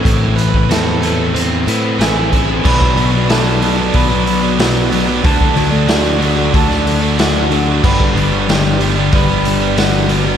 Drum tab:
CC |----------------|x---------------|----------------|x---------------|
HH |x-x-x-x-x-x-x-x-|--o-o-o-o-o-o-o-|o-o-o-o-o-o-o-o-|--o-o-o-o-o-o-o-|
SD |----o-------o---|----o-------o---|----o----o--o---|----o-------o---|
BD |o--o----------o-|oo------o-------|oo------o-------|oo------o-------|